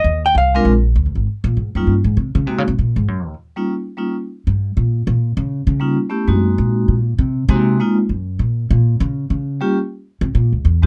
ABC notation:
X:1
M:4/4
L:1/8
Q:"Swing" 1/4=198
K:Ab
V:1 name="Hollow-body jazz guitar"
e g f2 z4 | z8 | z8 | z8 |
z8 | z8 | z8 | z8 |
z8 |]
V:2 name="Vibraphone"
z3 [A,C=DFB] z4 | z3 [G,B,DEF] z4 | [A,B,CE_G] z6 [=G,B,DEF] | z2 [G,B,DEF] z4 z |
z6 [G,B,DEF] z | [=A,_CD_FG] [_A,B,=CE_G]4 z3 | z [A,B,CE_G]2 [A,B,CEF] z4 | z6 z [G,B,DFG] |
z6 z [A,CE] |]
V:3 name="Upright bass" clef=bass
E,,2 C,,2 B,,,2 (3=D,, B,,, A,,, | z B,, A,, _G,, =G,, A,, C, D, | (3C, D, C, B,, A,, _G,, E,, z2 | z4 z G,,2 B,,- |
B,, B,,2 D,2 D,2 z | z _G,,2 B,,2 B,,2 C,- | C, C,2 z2 _G,,2 B,,- | B,, B,,2 D,2 D,2 z |
z3 C, B,, D,, =E,, G,, |]